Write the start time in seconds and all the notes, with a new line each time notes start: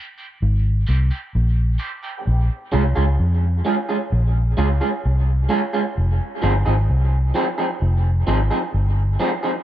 0.18 D#3 G#3 C4 G4
0.42 G#1
0.87 C2 D#3 G#3 C4 G4
1.11 D#3 G#3 C4 G4
1.35 A#1
1.78 D#3 G#3 C4 G4
2.03 D#3 G#3 C4 G4
2.27 A#1
2.72 C2 G#3 C#4 F4 G#4
2.95 C#2 G#3 C#4 F4 G#4
3.20 F2
3.65 G#3 C#4 F4 G#4
3.89 G#3 C#4 F4 G#4
4.12 A#1
4.57 C#2 G#3 C#4 F4 G#4
4.81 G#3 C#4 F4 G#4
5.05 C2
5.49 G#3 C#4 F4 G#4
5.73 G#3 C#4 F4 G#4
5.98 F1
6.42 G1 F3 C4 D#4 G#4
6.66 G#1 F3 C4 D#4 G#4
6.90 C2
7.34 F3 C4 D#4 G#4
7.58 F3 C4 D#4 G#4
7.82 F1
8.27 G#1 F3 C4 D#4 G#4
8.51 F3 C4 D#4 G#4
8.74 G1
9.20 F3 C4 D#4 G#4
9.43 F3 C4 D#4 G#4